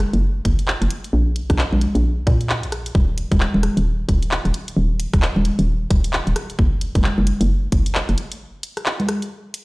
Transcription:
0.00 cross-stick, closed hi-hat
0.13 fm bass F#1, closed hi-hat
0.45 fm bass F#1, kick, closed hi-hat
0.59 closed hi-hat
0.68 clap
0.82 fm bass F#1, cross-stick, closed hi-hat
0.91 closed hi-hat
1.04 closed hi-hat
1.13 fm bass A#1
1.36 closed hi-hat
1.50 fm bass A#1, kick, cross-stick, closed hi-hat
1.59 clap
1.72 fm bass A#1, high conga
1.81 closed hi-hat
1.95 fm bass A#1, closed hi-hat
2.27 fm bass A#2, kick, closed hi-hat
2.41 closed hi-hat
2.50 clap
2.63 fm bass A#1, closed hi-hat
2.72 cross-stick, closed hi-hat
2.86 closed hi-hat
2.95 fm bass D#1, kick
3.18 closed hi-hat
3.32 fm bass D#1, kick, closed hi-hat, high conga
3.40 clap
3.54 fm bass D#1, high conga
3.63 cross-stick, closed hi-hat
3.77 fm bass D#1, closed hi-hat
4.09 fm bass D#1, kick, closed hi-hat
4.23 closed hi-hat
4.31 clap
4.45 fm bass D#1, cross-stick, closed hi-hat
4.54 closed hi-hat
4.68 closed hi-hat
4.77 fm bass D#1
5.00 closed hi-hat
5.13 fm bass D#1, kick, cross-stick, closed hi-hat
5.22 clap
5.36 fm bass D#1, high conga
5.45 closed hi-hat
5.59 fm bass D#1, closed hi-hat
5.90 fm bass D#1, kick, closed hi-hat
6.04 closed hi-hat
6.13 clap
6.27 fm bass D#1, closed hi-hat
6.36 cross-stick, closed hi-hat
6.50 closed hi-hat
6.59 fm bass F#1, kick
6.81 closed hi-hat
6.95 fm bass F#1, kick, closed hi-hat, high conga
7.04 clap
7.18 fm bass F#1, high conga
7.27 closed hi-hat
7.41 fm bass F#1, closed hi-hat
7.72 fm bass F#1, kick, closed hi-hat
7.86 closed hi-hat
7.95 clap
8.09 fm bass F#1, cross-stick, closed hi-hat
8.18 closed hi-hat
8.32 closed hi-hat
8.63 closed hi-hat
8.77 cross-stick, closed hi-hat
8.86 clap
9.00 closed hi-hat, high conga
9.09 cross-stick, closed hi-hat
9.22 closed hi-hat
9.54 closed hi-hat

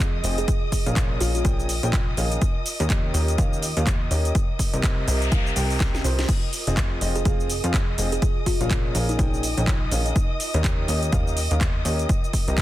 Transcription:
Already playing: analog synth bass F2, ambient pad F4 A#4 D#5 G#5, violin section D#5 D#6
0.00 kick, clap, closed hi-hat, cabasa
0.24 analog synth bass F1, upright piano C4 F4 G#4 D#5, open hi-hat, cabasa
0.38 kalimba G#4, closed hi-hat, cabasa
0.48 kick, closed hi-hat, cabasa
0.72 kick, open hi-hat, cabasa
0.86 analog synth bass A#1, upright piano A#2 C#4 G#4 A#4 F5, closed hi-hat, cabasa
0.96 kick, clap, closed hi-hat, cabasa
1.21 analog synth bass A#1, upright piano A#2 C#4 G#4 A#4 F5, kalimba F4, open hi-hat, cabasa
1.35 kalimba F4, closed hi-hat, cabasa
1.45 analog synth bass A#1, upright piano A#2 C#4 G#4 A#4 G5, kick, closed hi-hat, cabasa
1.60 cabasa
1.69 open hi-hat, cabasa
1.83 analog synth bass A#1, upright piano A#2 C#4 G#4 A#4 G5, closed hi-hat, cabasa
1.93 kick, clap, closed hi-hat, cabasa
2.17 analog synth bass A#1, upright piano D#3 C#4 G#4 A#4 F5, open hi-hat, cabasa
2.32 closed hi-hat, cabasa
2.42 kick, closed hi-hat, cabasa
2.66 open hi-hat, cabasa
2.78 analog synth bass D#2, upright piano D#3 C#4 G4 A#4 D#5, ambient pad G5, closed hi-hat, cabasa
2.90 kick, clap, closed hi-hat, cabasa
3.14 analog synth bass D#2, upright piano D#3 C#4 G4 A#4 D#5, open hi-hat, cabasa
3.28 closed hi-hat, cabasa
3.38 analog synth bass D#2, upright piano D#3 C#4 G4 A#4 F5, kick, closed hi-hat, cabasa
3.53 cabasa
3.62 open hi-hat, cabasa
3.77 analog synth bass D#2, upright piano D#3 C#4 G4 A#4 F5, closed hi-hat, cabasa
3.87 kick, clap, closed hi-hat, cabasa
4.11 analog synth bass D#2, upright piano C#4 G4 A#4 D#5, open hi-hat, cabasa
4.25 closed hi-hat, cabasa
4.35 kick, closed hi-hat, noise sweep, cabasa
4.59 kick, open hi-hat, cabasa
4.74 analog synth bass C2, upright piano C3 C4 G4 A#4 D#5, closed hi-hat, cabasa
4.83 kick, clap, closed hi-hat, cabasa
5.08 analog synth bass C2, upright piano C3 C4 G4 A#4 D#5, open hi-hat, cabasa
5.22 closed hi-hat, cabasa
5.32 analog synth bass C2, upright piano C3 C4 G4 A#4 F5, kick, closed hi-hat, cabasa
5.47 cabasa
5.56 analog synth bass C2, upright piano C3 C4 G4 A#4 G5, open hi-hat, cabasa
5.70 open hi-hat, cabasa
5.80 kick, snare, clap, closed hi-hat, cabasa
5.95 snare, cabasa
6.04 analog synth bass C2, upright piano F3 C4 G4 A#4 C5, open hi-hat, cabasa
6.19 snare, closed hi-hat, cabasa
6.29 violin section D#5 D#6, kick, closed hi-hat, crash, cabasa
6.53 open hi-hat, cabasa
6.58 ambient pad G#5
6.67 analog synth bass F1, upright piano F3 C4 F4 G#4 D#5, closed hi-hat, cabasa
6.77 kick, clap, closed hi-hat, cabasa
7.01 analog synth bass F1, upright piano F3 C4 F4 G#4 D#5, open hi-hat, cabasa
7.16 kalimba G#4, closed hi-hat, cabasa
7.25 analog synth bass F1, upright piano F3 C4 F4 G#4 F5, kalimba G#4, kick, closed hi-hat, cabasa
7.40 cabasa
7.50 open hi-hat, cabasa
7.64 analog synth bass F2, upright piano F3 C4 F4 G#4 F5, closed hi-hat, cabasa
7.74 kick, clap, closed hi-hat, cabasa
7.98 analog synth bass F1, upright piano C4 F4 G#4 D#5, open hi-hat, cabasa
8.12 kalimba G#4, closed hi-hat, cabasa
8.22 kick, closed hi-hat, cabasa
8.46 kalimba F4, kick, open hi-hat, cabasa
8.61 analog synth bass A#1, upright piano A#2 C#4 G#4 A#4 F5, kalimba F4, closed hi-hat, cabasa
8.71 kick, clap, closed hi-hat, cabasa
8.95 analog synth bass A#1, upright piano A#2 C#4 G#4 A#4 F5, open hi-hat, cabasa
9.09 kalimba D#4, closed hi-hat, cabasa
9.19 analog synth bass A#1, upright piano A#2 C#4 G#4 A#4 G5, kick, closed hi-hat, cabasa
9.34 cabasa
9.43 open hi-hat, cabasa
9.57 analog synth bass A#1, upright piano A#2 C#4 G#4 A#4 G5, closed hi-hat, cabasa
9.67 kick, clap, closed hi-hat, cabasa
9.91 analog synth bass A#1, upright piano D#3 C#4 G#4 A#4 F5, open hi-hat, cabasa
10.06 closed hi-hat, cabasa
10.16 ambient pad F4, kick, closed hi-hat, cabasa
10.40 open hi-hat, cabasa
10.54 analog synth bass D#2, upright piano D#3 C#4 G4 A#4 D#5, closed hi-hat, cabasa
10.64 kick, clap, closed hi-hat, cabasa
10.87 analog synth bass D#2, upright piano D#3 C#4 G4 A#4 D#5, ambient pad G5, open hi-hat, cabasa
11.03 closed hi-hat, cabasa
11.12 analog synth bass D#2, upright piano D#3 C#4 G4 A#4 F5, kick, closed hi-hat, cabasa
11.27 cabasa
11.37 open hi-hat, cabasa
11.51 analog synth bass D#2, upright piano D#3 C#4 G4 A#4 F5, closed hi-hat, cabasa
11.61 kick, clap, closed hi-hat, cabasa
11.85 analog synth bass D#2, upright piano C#4 G4 A#4 D#5, open hi-hat, cabasa
11.99 closed hi-hat, cabasa
12.09 kick, closed hi-hat, cabasa
12.24 cabasa
12.33 kick, open hi-hat, cabasa
12.48 analog synth bass C2, upright piano C3 C4 G4 A#4 D#5, closed hi-hat, cabasa
12.58 kick, clap, closed hi-hat, cabasa

